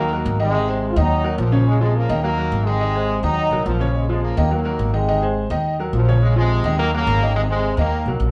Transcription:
Already playing: upright bass D#2, trombone section D#3 A#3
0.12 grand piano F#3 F#4 A#4
0.25 upright bass G#1
0.39 trombone section C3 G#3, grand piano D#3 D#4 D#5
0.54 grand piano D#3 D#4 D#5
0.68 grand piano G#3 G#4 C5
0.90 trombone section F4
0.96 upright bass D#2, grand piano D#3 D#4 D#5, trombone section F#3 D#4
1.24 grand piano F#3 F#4 A#4
1.38 upright bass A#1, trombone section A#2 F3
1.52 grand piano C#3 C#4 C#5
1.66 trombone section C#3 G#3
1.81 trombone section C3 G#3, grand piano F3 F4 G#4
1.95 trombone section C#3 A#3
2.09 upright bass D#2, grand piano D#3 D#4 D#5
2.23 trombone section D#3 A#3, grand piano F#3 F#4 A#4
2.38 grand piano F#3 F#4 A#4
2.52 upright bass G#1
2.66 trombone section C3 G#3, grand piano D#3 D#4 D#5
2.80 grand piano D#3 D#4 D#5
2.95 grand piano G#3 G#4 C5
3.23 upright bass D#2, grand piano D#3 D#4 D#5, trombone section F#3 D#4
3.51 upright bass C2, grand piano F#3 F#4 A#4
3.66 upright bass A#1, trombone section A#2 F3
3.80 grand piano C#3 C#4 C#5
3.96 trombone section C#3 G#3
4.09 trombone section C3 G#3, grand piano F3 F4 G#4
4.23 trombone section C#3 A#3
4.37 upright bass D#2, grand piano D#3 D#4 D#5
4.51 trombone section D#3 A#3, grand piano F#3 F#4 A#4
4.65 grand piano F#3 F#4 A#4
4.79 upright bass G#1
4.93 trombone section C3 G#3, grand piano D#3 D#4 D#5
5.08 grand piano D#3 D#4 D#5
5.22 grand piano G#3 G#4 C5
5.50 upright bass D#2, grand piano D#3 D#4 D#5
5.79 grand piano F#3 F#4 A#4
5.93 upright bass A#1, trombone section A#2 F3
6.08 grand piano C#3 C#4 C#5
6.22 trombone section C#3 G#3
6.36 trombone section C3 G#3, grand piano F3 F4 G#4
6.64 upright bass D#2, grand piano D#3 D#4 D#5
6.79 trombone section D#3 A#3, grand piano F#3 F#4 A#4
6.94 trombone section C#3 A#3, grand piano F#3 F#4 A#4
7.07 upright bass G#1
7.22 grand piano D#3 D#4 D#5
7.35 trombone section C3 G#3, grand piano D#3 D#4 D#5
7.50 trombone section C3 G#3, grand piano G#3 G#4 C5
7.77 upright bass D#2, grand piano D#3 D#4 D#5, trombone section D#3 A#3
8.06 upright bass C2, grand piano F#3 F#4 A#4
8.20 upright bass A#1

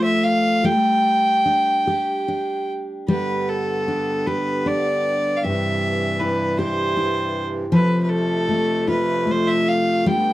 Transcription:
Already playing: steel-string acoustic guitar F3 A3 F4
0.04 fiddle E5
0.24 fiddle F5
0.64 steel-string acoustic guitar G3, fiddle G5
1.46 steel-string acoustic guitar D4
1.87 steel-string acoustic guitar G4
2.28 steel-string acoustic guitar D4
3.08 accordion G2 D3 B3, steel-string acoustic guitar G3, fiddle B4
3.49 fiddle A4
3.88 steel-string acoustic guitar D4
4.27 steel-string acoustic guitar G4, fiddle B4
4.66 steel-string acoustic guitar D4, fiddle D5
5.37 fiddle F5
5.43 steel-string acoustic guitar G2, accordion G2 C3 E3 G3, fiddle E5
6.20 steel-string acoustic guitar E4, fiddle B4
6.58 steel-string acoustic guitar G4, fiddle C5
6.97 steel-string acoustic guitar E4
7.72 accordion F2 C3 A3, steel-string acoustic guitar F3, fiddle B4
8.03 fiddle B4
8.09 fiddle A4
8.49 steel-string acoustic guitar A3
8.88 steel-string acoustic guitar F4, fiddle B4
9.27 steel-string acoustic guitar A3
9.31 fiddle C5
9.47 fiddle E5
9.68 fiddle F5
10.04 accordion G2 D3 B3, steel-string acoustic guitar G3
10.09 fiddle G5

